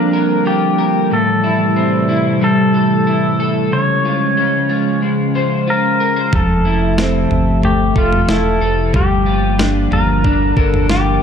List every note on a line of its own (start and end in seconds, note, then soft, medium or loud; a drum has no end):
0.00 1.09 D3 medium
0.00 1.09 F3 medium
0.00 1.14 G3 medium
0.00 3.68 G3 medium
0.00 1.08 A#3 medium
0.00 1.08 C4 medium
0.00 1.18 D4 medium
0.00 0.44 F4 medium
0.00 0.47 A#4 medium
0.13 0.77 A#4 medium
0.46 1.18 F4 soft
0.46 1.14 G4 medium
0.78 1.18 A#4 medium
1.11 3.72 A2 medium
1.11 3.69 C3 medium
1.11 3.69 E3 medium
1.11 3.70 A3 medium
1.11 3.69 E4 medium
1.11 2.43 A4 medium
1.44 2.08 E4 medium
1.76 4.37 C4 medium
2.09 3.06 E4 medium
2.41 3.79 G3 medium
2.41 3.73 A4 medium
2.74 3.39 A4 medium
3.07 3.79 E4 medium
3.40 3.79 A4 medium
3.72 6.33 C#3 medium
3.72 6.31 C#3 medium
3.72 11.23 F3 medium
3.72 6.31 G#3 medium
3.72 6.31 C#4 medium
3.72 4.99 C#5 medium
4.05 4.69 F4 medium
4.37 6.40 C#4 medium
4.69 5.67 F4 medium
5.02 6.39 G#3 medium
5.35 6.00 C5 medium
5.67 6.65 F4 soft
5.67 6.36 A#4 medium
6.00 6.16 A#4 medium
6.16 6.39 C5 soft
6.33 7.27 F1 medium
6.33 8.92 C3 medium
6.33 8.97 F3 medium
6.33 8.92 A3 medium
6.33 7.64 A4 medium
6.33 8.92 E5 medium
6.33 kick loud
6.33 floor tom medium
6.65 7.31 E4 medium
6.98 9.01 C4 medium
6.98 snare loud
7.31 7.93 G1 medium
7.31 floor tom medium
7.63 8.93 A3 medium
7.63 7.98 G4 medium
7.63 floor tom medium
7.96 8.27 F1 medium
7.96 8.27 F4 medium
7.96 8.60 A4 medium
7.96 kick medium
8.12 floor tom medium
8.28 8.60 E1 medium
8.28 9.00 E4 medium
8.28 8.91 A4 medium
8.28 snare loud
8.61 8.92 F1 medium
8.61 9.00 A4 medium
8.94 9.88 G1 loud
8.94 11.23 D3 medium
8.94 11.23 G3 medium
8.94 11.23 A#3 medium
8.94 9.93 G4 medium
8.94 kick medium
8.94 floor tom medium
9.26 9.90 F4 medium
9.58 10.23 D4 medium
9.58 snare loud
9.91 10.54 G1 loud
9.91 10.88 F4 medium
9.91 10.56 A#4 medium
9.91 floor tom medium
10.24 11.23 D4 medium
10.24 kick medium
10.24 floor tom medium
10.56 11.19 G1 medium
10.56 10.86 A4 medium
10.56 11.21 A#4 medium
10.56 kick medium
10.74 floor tom medium
10.89 11.23 F4 medium
10.89 11.23 G4 medium
10.89 snare loud